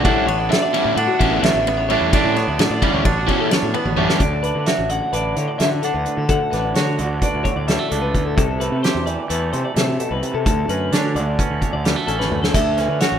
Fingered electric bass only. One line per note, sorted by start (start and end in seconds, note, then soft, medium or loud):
0.05 0.25 A1 loud
0.27 0.48 A1 loud
0.85 0.95 A2 medium
0.97 1.07 A2 medium
1.20 1.40 A1 loud
1.43 1.53 A1 medium
1.54 1.95 A1 medium
2.01 2.11 E2 medium
2.24 2.44 A2 medium
2.48 2.58 D2 medium
2.59 2.69 A2 medium
2.70 2.81 A2 medium
2.93 3.03 D2 medium
3.05 3.25 A1 medium
3.63 3.73 A2 medium
3.85 4.06 A1 loud
4.20 4.51 D2 loud
4.55 4.65 D3 medium
4.79 4.99 A1 medium
5.13 5.33 A1 medium
5.37 5.47 D3 medium
5.60 5.80 D3 medium
5.94 6.04 D2 medium
6.17 6.38 D3 medium
6.53 6.73 A1 medium
6.76 7.01 D3 medium
6.99 7.19 D2 medium
7.34 7.44 D2 medium
7.56 7.77 D2 medium
7.91 8.12 C#2 medium
8.14 8.35 D2 medium
8.38 8.68 C2 loud
8.72 8.82 C3 loud
8.95 9.15 E2 medium
9.30 9.50 E2 medium
9.53 9.63 C3 medium
9.76 9.97 C3 medium
10.11 10.21 C2 medium
10.34 10.45 C3 medium
10.46 10.66 D2 loud
10.69 10.89 F#2 medium
10.92 11.17 D3 medium
11.15 11.36 D2 medium
11.50 11.61 D2 medium
11.73 11.94 D2 medium
12.07 12.28 A1 medium
12.31 12.52 D2 medium
12.54 12.85 D2 loud
12.88 12.99 D3 loud
13.12 13.19 A1 medium